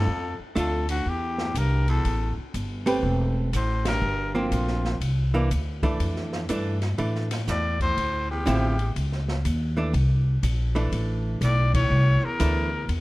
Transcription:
Already playing: baritone saxophone F2, trumpet A4
0.07 upright bass F2
0.39 muted upright bass stroke
0.56 upright bass D2, baritone saxophone F2, hollow-body jazz guitar A3 D4 F4, trumpet A4, hi-hat pedal, ride
0.89 baritone saxophone D2, trumpet F#4, ride
1.06 upright bass E2, baritone saxophone E2, trumpet G4
1.38 snare
1.55 upright bass C2, baritone saxophone G2, trumpet A#4, hi-hat pedal, ride
1.88 baritone saxophone E2, trumpet A4, ride
2.05 upright bass A1, ride
2.38 muted upright bass stroke
2.54 upright bass G1, hi-hat pedal, ride
2.86 hollow-body jazz guitar A3 C4 G4 B4, ride
3.03 upright bass E1
3.53 upright bass A1, baritone saxophone A2, trumpet C5, hi-hat pedal, ride
3.85 baritone saxophone G2, trumpet A#4, snare, ride
4.02 upright bass G1
4.35 baritone saxophone D2, hollow-body jazz guitar F3 A#3 C4, trumpet F4
4.51 upright bass A#1, hi-hat pedal, ride
4.68 snare
4.85 snare
5.00 upright bass C2, ride
5.34 hollow-body jazz guitar E3 A#3 D4
5.51 upright bass D2, hi-hat pedal, ride
5.83 hollow-body jazz guitar E3 A3 D4, kick, ride
6.00 upright bass F2, ride
6.16 snare
6.33 snare
6.49 upright bass G2, hollow-body jazz guitar E3 A3 D4, hi-hat pedal, ride
6.82 snare, ride
6.98 upright bass A2, hollow-body jazz guitar E3 A3 D4, ride
7.15 snare
7.31 snare, ride
7.47 upright bass E2, baritone saxophone A2, trumpet D5, snare, hi-hat pedal
7.80 baritone saxophone A2, trumpet C5, kick, ride
7.97 upright bass D2, ride
8.31 baritone saxophone E2, trumpet G4
8.46 upright bass A1, hollow-body jazz guitar D3 F3 C4 E4, hi-hat pedal, ride
8.79 ride
8.96 upright bass C#2, ride
9.12 snare
9.28 snare
9.45 upright bass D#2, hi-hat pedal, ride
9.77 hollow-body jazz guitar E3 A3 D4
9.93 upright bass C2, ride
10.43 upright bass A#1, hi-hat pedal, ride
10.75 hollow-body jazz guitar E3 A3 D4, ride
10.92 upright bass A1, ride
11.41 upright bass B1, baritone saxophone A2, trumpet D5, hi-hat pedal, ride
11.74 baritone saxophone A2, trumpet C#5, kick, ride
11.90 upright bass C2
12.23 baritone saxophone E2, trumpet A#4, muted upright bass stroke
12.40 upright bass D2, hollow-body jazz guitar E3 A3 D4, hi-hat pedal, ride
12.88 upright bass E2, ride

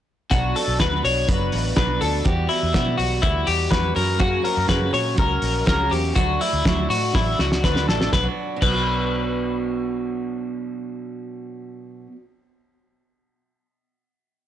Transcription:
0.30 fingered electric bass B1, steel-string acoustic guitar B2 F#3 B3 D4 F#4, clean electric guitar F#4, kick, closed hi-hat
0.55 steel-string acoustic guitar B3 D4 F#4, clean electric guitar A4, open hi-hat
0.68 fingered electric bass B1
0.79 steel-string acoustic guitar B2 F#3 B3 D4 F#4, clean electric guitar B4, kick, snare, closed hi-hat
1.03 fingered electric bass B1, steel-string acoustic guitar B3 D4 F#4, clean electric guitar C#5, open hi-hat
1.27 fingered electric bass F#1, steel-string acoustic guitar F#3 B3 D4 F#4, clean electric guitar B4, kick, closed hi-hat
1.52 fingered electric bass A1, open hi-hat
1.76 steel-string acoustic guitar B2 F#3 B3 D4 F#4, clean electric guitar B4, kick, snare, closed hi-hat
2.01 fingered electric bass D2, steel-string acoustic guitar B3 D4 F#4, clean electric guitar A4, open hi-hat
2.25 fingered electric bass E2, steel-string acoustic guitar E3 G3 B3 F#4, clean electric guitar G4, kick, closed hi-hat
2.49 steel-string acoustic guitar G3 B3 F#4, clean electric guitar E4, open hi-hat
2.63 fingered electric bass E2
2.73 fingered electric bass B2, steel-string acoustic guitar E3 G3 B3 F#4, kick, snare, closed hi-hat
2.97 fingered electric bass B1, steel-string acoustic guitar G3 B3 F#4, clean electric guitar F#4, open hi-hat
3.21 fingered electric bass D2, steel-string acoustic guitar E3 G3 B3 F#4, clean electric guitar E4, kick, closed hi-hat
3.47 fingered electric bass E2, clean electric guitar G4, open hi-hat
3.70 fingered electric bass E2, steel-string acoustic guitar E3 G3 B3 F#4, clean electric guitar B4, kick, snare, closed hi-hat
3.95 fingered electric bass F#2, steel-string acoustic guitar F#3 A#3 C#4 F#4, clean electric guitar A#4, open hi-hat
4.17 steel-string acoustic guitar F#2 C#3 F#3 A#3 C#4 F#4, clean electric guitar F#4, kick, closed hi-hat
4.42 steel-string acoustic guitar F#3 A#3 C#4 F#4, clean electric guitar A#4, open hi-hat
4.57 fingered electric bass F#2
4.67 steel-string acoustic guitar F#2 C#3 F#3 A#3 C#4 F#4, fingered electric bass F#2, clean electric guitar B4, kick, snare, closed hi-hat
4.91 fingered electric bass A#2, steel-string acoustic guitar F#3 A#3 C#4 F#4, clean electric guitar C#5, open hi-hat
5.15 fingered electric bass C#2, steel-string acoustic guitar F#3 A#3 C#4 F#4, kick, closed hi-hat
5.19 clean electric guitar A#4
5.42 fingered electric bass A#1, open hi-hat
5.65 fingered electric bass C#2, steel-string acoustic guitar F#2 C#3 F#3 A#3 C#4 F#4, clean electric guitar A#4, kick, snare, closed hi-hat
5.89 fingered electric bass E2, steel-string acoustic guitar F#3 A#3 C#4 F#4, clean electric guitar G4, open hi-hat
6.14 fingered electric bass D2, steel-string acoustic guitar D3 F#3 A3 D4 F#4, clean electric guitar F#4, kick, closed hi-hat
6.40 steel-string acoustic guitar A3 D4 F#4, clean electric guitar E4, open hi-hat
6.53 fingered electric bass D2
6.65 fingered electric bass D2, steel-string acoustic guitar D3 F#3 A3 D4 F#4, kick, snare, closed hi-hat
6.89 fingered electric bass A2, steel-string acoustic guitar A3 D4 F#4, clean electric guitar F#4, open hi-hat
7.14 fingered electric bass A1, steel-string acoustic guitar F#3 A3 D4 F#4, clean electric guitar E4, kick, snare
7.39 fingered electric bass C#2, clean electric guitar F#4, snare
7.52 snare
7.64 fingered electric bass D2, steel-string acoustic guitar D3 F#3 A3 D4 F#4, clean electric guitar B4, kick, snare
7.76 snare
7.88 fingered electric bass A1, steel-string acoustic guitar A3 D4 F#4, clean electric guitar A4, snare
8.01 snare
8.08 steel-string acoustic guitar B2
8.13 fingered electric bass B1, steel-string acoustic guitar F#3, clean electric guitar B4, kick, snare
8.17 steel-string acoustic guitar B3 D4
8.23 steel-string acoustic guitar F#4
8.56 steel-string acoustic guitar B2
8.62 fingered electric bass B1, steel-string acoustic guitar F#3 B3, clean electric guitar B4, kick, crash
8.69 steel-string acoustic guitar D4 F#4

